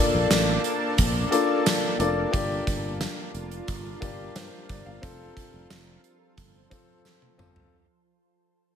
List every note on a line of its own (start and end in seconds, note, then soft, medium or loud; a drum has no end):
0.00 1.31 A#3 medium
0.00 2.29 A#3 medium
0.00 1.31 D4 medium
0.00 4.99 D4 medium
0.00 1.31 F4 medium
0.00 1.32 A4 medium
0.00 2.29 A4 medium
0.00 2.35 C5 medium
0.00 1.32 D5 loud
0.15 0.27 A#1 loud
0.30 0.56 A1 loud
0.30 snare loud
0.30 closed hi-hat medium
0.30 tambourine medium
0.64 closed hi-hat medium
0.64 tambourine medium
0.98 1.24 A#1 medium
0.98 kick medium
0.98 closed hi-hat medium
0.98 tambourine soft
1.31 1.72 A#3 medium
1.31 1.72 D4 medium
1.31 1.72 F4 medium
1.31 1.72 A4 medium
1.31 1.72 D5 medium
1.31 closed hi-hat medium
1.31 tambourine medium
1.66 snare loud
1.66 closed hi-hat loud
1.66 tambourine medium
1.99 2.25 F1 loud
1.99 2.19 A#3 medium
1.99 2.20 D4 medium
1.99 2.20 F4 medium
1.99 2.20 A4 medium
1.99 2.20 D5 medium
1.99 closed hi-hat medium
1.99 tambourine medium
2.31 2.59 G1 loud
2.31 5.00 G3 medium
2.31 3.13 A#3 loud
2.31 3.14 D4 medium
2.31 3.14 F4 medium
2.31 7.69 F4 medium
2.31 3.14 G4 medium
2.31 5.00 A#4 medium
2.31 3.14 D5 loud
2.31 kick loud
2.31 closed hi-hat loud
2.31 tambourine soft
2.67 3.05 G1 loud
2.67 kick medium
2.67 closed hi-hat medium
2.67 tambourine soft
3.01 snare loud
3.01 closed hi-hat medium
3.01 tambourine medium
3.34 3.60 F1 medium
3.34 closed hi-hat medium
3.34 tambourine medium
3.51 closed hi-hat medium
3.68 3.94 G1 loud
3.68 kick medium
3.68 closed hi-hat medium
3.68 tambourine soft
4.00 4.27 G1 medium
4.00 4.42 A#3 medium
4.00 4.42 D4 medium
4.00 4.42 F4 medium
4.00 4.42 G4 medium
4.00 4.36 D5 medium
4.00 kick medium
4.00 closed hi-hat medium
4.00 tambourine medium
4.35 4.48 G2 loud
4.35 4.67 C5 medium
4.35 snare loud
4.35 closed hi-hat loud
4.35 tambourine medium
4.69 4.82 G1 medium
4.69 4.85 D5 medium
4.69 kick loud
4.69 closed hi-hat medium
4.69 tambourine medium
4.86 4.99 G1 loud
4.86 5.18 F5 medium
5.01 5.28 F1 loud
5.01 7.70 F3 medium
5.01 5.83 C4 medium
5.01 5.84 F4 medium
5.01 5.84 A4 loud
5.01 7.70 A4 medium
5.01 7.70 C5 loud
5.01 kick loud
5.01 closed hi-hat loud
5.01 tambourine medium
5.37 kick medium
5.37 closed hi-hat medium
5.54 5.66 F1 loud
5.70 5.96 F1 medium
5.70 snare loud
5.70 closed hi-hat medium
5.70 tambourine medium
6.04 closed hi-hat medium
6.04 tambourine medium
6.37 6.63 G1 loud
6.37 kick medium
6.37 closed hi-hat medium
6.37 tambourine soft
6.70 7.11 C4 medium
6.70 7.12 F4 medium
6.70 7.12 A4 medium
6.70 kick loud
6.70 closed hi-hat medium
6.70 tambourine medium
7.05 snare medium
7.05 tambourine medium
7.22 high tom medium
7.38 7.64 G1 medium
7.38 7.59 C4 medium
7.38 7.59 F4 medium
7.38 7.59 A4 medium
7.38 mid tom loud
7.38 tambourine medium
7.56 floor tom loud